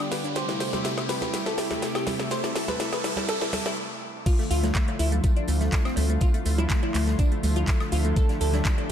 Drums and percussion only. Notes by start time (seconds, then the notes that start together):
0.00 snare
0.11 snare, open hi-hat, tambourine, high bongo, shaker
0.24 closed hi-hat, cowbell, shaker
0.35 snare, closed hi-hat, tambourine, shaker
0.49 snare, closed hi-hat
0.60 snare, open hi-hat, tambourine, shaker
0.73 snare, closed hi-hat, high bongo, high conga, shaker
0.84 snare, closed hi-hat, tambourine, shaker
0.98 snare, closed hi-hat, high woodblock
1.09 snare, open hi-hat, tambourine, shaker
1.22 snare, closed hi-hat, high conga, shaker
1.34 snare, closed hi-hat, tambourine, shaker
1.46 snare, closed hi-hat, high bongo
1.58 snare, open hi-hat, tambourine, shaker
1.71 snare, closed hi-hat, high conga, shaker
1.82 snare, closed hi-hat, tambourine, shaker
1.95 snare, closed hi-hat, high woodblock
2.07 snare, open hi-hat, tambourine, high bongo, high conga, shaker
2.19 snare, closed hi-hat, shaker
2.30 snare, closed hi-hat, tambourine, shaker
2.44 snare, closed hi-hat
2.56 snare, open hi-hat, tambourine, shaker
2.68 snare, closed hi-hat, high conga, shaker
2.79 snare, closed hi-hat, tambourine, high bongo, shaker
2.93 snare, closed hi-hat, high woodblock
3.04 snare, open hi-hat, tambourine, shaker
3.16 snare, closed hi-hat, cowbell, high conga, shaker
3.28 snare, closed hi-hat, tambourine, shaker
3.41 snare, closed hi-hat, high bongo
3.53 snare, open hi-hat, tambourine, high conga, shaker
3.65 snare, closed hi-hat, cowbell, shaker
4.26 kick, closed hi-hat, crash, tambourine, shaker
4.39 snare, closed hi-hat
4.51 open hi-hat, tambourine, high bongo, shaker
4.63 snare, closed hi-hat, cowbell, high conga, shaker
4.74 kick, snare, clap, closed hi-hat, tambourine
4.88 closed hi-hat, cowbell
4.99 open hi-hat, tambourine, shaker
5.12 closed hi-hat, high conga, shaker
5.23 kick, closed hi-hat, tambourine, high bongo, shaker
5.37 closed hi-hat
5.48 open hi-hat, tambourine, shaker
5.61 snare, closed hi-hat, high conga, shaker
5.73 kick, snare, clap, closed hi-hat, tambourine, shaker
5.85 snare, closed hi-hat, high bongo, high woodblock
5.96 open hi-hat, tambourine, cowbell, high conga, shaker
6.10 closed hi-hat, shaker
6.21 kick, closed hi-hat, tambourine, shaker
6.34 closed hi-hat
6.46 open hi-hat, tambourine, shaker
6.58 closed hi-hat, cowbell, high bongo, high conga, shaker
6.69 kick, snare, clap, closed hi-hat, tambourine, shaker
6.83 closed hi-hat, cowbell
6.95 clap, open hi-hat, tambourine, shaker
7.07 snare, closed hi-hat, high conga, shaker
7.18 kick, closed hi-hat, tambourine, high bongo, shaker
7.32 closed hi-hat
7.43 open hi-hat, tambourine, high conga, shaker
7.56 closed hi-hat, shaker
7.67 kick, snare, clap, closed hi-hat, tambourine, shaker
7.80 snare, closed hi-hat, high woodblock
7.92 open hi-hat, tambourine, high bongo, shaker
8.05 closed hi-hat, shaker
8.16 kick, closed hi-hat, tambourine, shaker
8.29 snare, closed hi-hat
8.41 open hi-hat, tambourine, shaker
8.53 snare, closed hi-hat, cowbell, high bongo, high conga, shaker
8.65 kick, snare, clap, closed hi-hat, tambourine
8.78 closed hi-hat, cowbell